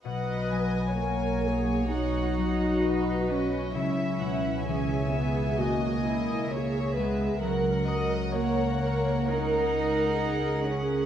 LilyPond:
<<
  \new Staff \with { instrumentName = "Violin section" } { \time 4/4 \key b \major \tempo 4 = 65 fis''8 gis''4. fis''4 dis''8 dis''8 | e''8 fis''8 gis''2 e''4 | fis''4 fis''4 fis''2 | }
  \new Staff \with { instrumentName = "Violin section" } { \time 4/4 \key b \major dis''4 cis''2 b'4 | e''4 e''4 dis''4 cis''8 b'8 | ais'8 dis''8 cis''8 cis''8 ais'2 | }
  \new Staff \with { instrumentName = "Viola section" } { \time 4/4 \key b \major b'4 ais'8 gis'8 fis'2 | e'4 gis'8 gis'8 fis'8 e'8 gis'4 | ais'4 ais'2 gis'4 | }
  \new Staff \with { instrumentName = "Cello section" } { \time 4/4 \key b \major fis4 ais4 dis'4. cis'8 | cis'4. b8 ais4. gis8 | fis4 ais4 dis'4. cis'8 | }
  \new Staff \with { instrumentName = "Harp" } { \clef bass \time 4/4 \key b \major b,8 fis8 fis'8 fis4 fis8 fis'8 fis8 | cis8 b,8 e8 cis'8 gis4 gis'8 b8 | cis4 fis'4 cis'2 | }
  \new Staff \with { instrumentName = "Double bass section" } { \clef bass \time 4/4 \key b \major b,,1 | cis,1 | cis,1 | }
>>